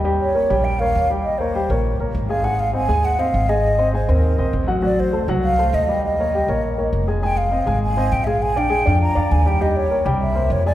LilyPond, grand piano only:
\new Staff \with { instrumentName = "Grand piano" } { \time 4/4 \key ees \mixolydian \tempo 4 = 201 <g g' g''>4 <bes bes' des''>8 <g g' g''>4 <bes bes' des''>4 <g g' g''>8~ | <g g' g''>8 <bes bes' des''>8 <g g' g''>8 <bes bes' des''>4 <bes bes' des''>4 <aes aes' aes''>8 | <aes aes' aes''>4 <c' c'' ees''>8 <aes aes' aes''>4 <c' c'' ees''>4 <aes aes' aes''>8~ | <aes aes' aes''>8 <c' c'' ees''>8 <aes aes' aes''>8 <c' c'' ees''>4 <c' c'' ees''>4 <ges ges' ges''>8 |
<fis fis' fis''>4 <a a' c''>8 <fis fis' fis''>4 <a a' c''>4 <g g' g''>8~ | <g g' g''>8 <bes bes' des''>8 <g g' g''>8 <bes bes' des''>4 <bes bes' des''>4 <aes aes' aes''>8 | <aes aes' aes''>4 <c' c'' ees''>8 <aes aes' aes''>4 <c' c'' ees''>4 <aes aes' aes''>8~ | <aes aes' aes''>8 <d' d'' f''>8 <aes aes' aes''>8 <d' d'' f''>4 <d' d'' f''>4 <g g' g''>8 |
<g g' g''>4 <bes bes' des''>8 <g g' g''>4 <bes bes' c''>4 <aes aes' aes''>8 | }